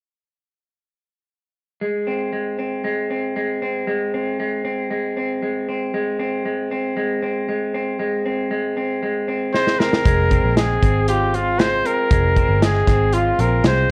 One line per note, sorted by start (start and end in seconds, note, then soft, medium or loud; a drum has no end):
1.81 2.32 G#3 medium
2.07 2.58 C4 soft
2.32 2.84 G#3 soft
2.58 3.10 C4 soft
2.84 3.36 G#3 medium
3.10 3.62 C4 soft
3.36 3.87 G#3 medium
3.62 4.13 C4 soft
3.87 4.39 G#3 medium
4.14 4.64 C4 soft
4.39 4.90 G#3 medium
4.65 5.17 C4 soft
4.91 5.42 G#3 medium
5.17 5.68 C4 soft
5.43 5.94 G#3 soft
5.69 6.19 C4 soft
5.94 6.45 G#3 medium
6.19 6.71 C4 soft
6.45 6.96 G#3 medium
6.71 7.22 C4 soft
6.97 7.48 G#3 medium
7.23 7.74 C4 soft
7.49 7.99 G#3 medium
7.74 8.25 C4 soft
8.00 8.51 G#3 medium
8.26 8.77 C4 medium
8.51 9.02 G#3 medium
8.77 9.28 C4 soft
9.03 9.54 G#3 medium
9.28 9.79 C4 soft
9.54 10.05 G#3 medium
9.54 9.81 C5 medium
9.54 snare soft
9.67 snare medium
9.79 10.30 C4 soft
9.79 10.56 A#4 medium
9.79 snare medium
9.93 snare medium
10.05 10.39 F1 medium
10.05 10.55 G#3 medium
10.05 kick loud
10.05 closed hi-hat medium
10.31 10.82 C4 soft
10.31 kick medium
10.31 closed hi-hat soft
10.44 10.77 A#1 medium
10.57 11.58 G#3 medium
10.57 11.05 G#4 medium
10.57 snare medium
10.57 closed hi-hat medium
10.83 11.81 G#1 medium
10.83 11.33 C4 medium
10.83 kick medium
10.83 closed hi-hat medium
11.08 13.12 F4 medium
11.08 11.36 G4 medium
11.08 closed hi-hat medium
11.34 11.83 C4 soft
11.34 11.61 F4 medium
11.34 closed hi-hat medium
11.59 12.09 G#3 soft
11.59 11.88 C5 medium
11.59 snare loud
11.59 closed hi-hat medium
11.85 12.35 C4 soft
11.85 12.65 A#4 medium
11.85 closed hi-hat medium
12.11 12.44 F1 medium
12.11 12.61 G#3 medium
12.11 kick loud
12.11 closed hi-hat medium
12.36 12.86 C4 soft
12.36 kick medium
12.36 closed hi-hat soft
12.49 12.82 G1 medium
12.62 13.63 G#3 soft
12.62 13.15 G#4 medium
12.62 snare medium
12.62 closed hi-hat medium
12.87 13.31 G#1 medium
12.87 13.38 C4 medium
12.87 kick medium
12.87 snare soft
12.87 closed hi-hat medium
13.13 13.42 F4 medium
13.13 13.91 F4 medium
13.13 closed hi-hat medium
13.39 13.61 A#1 medium
13.39 13.88 C4 soft
13.39 13.65 A#4 medium
13.39 closed hi-hat medium
13.64 13.86 C2 medium
13.64 13.91 G#3 medium
13.64 13.91 C5 medium
13.64 snare loud
13.64 closed hi-hat medium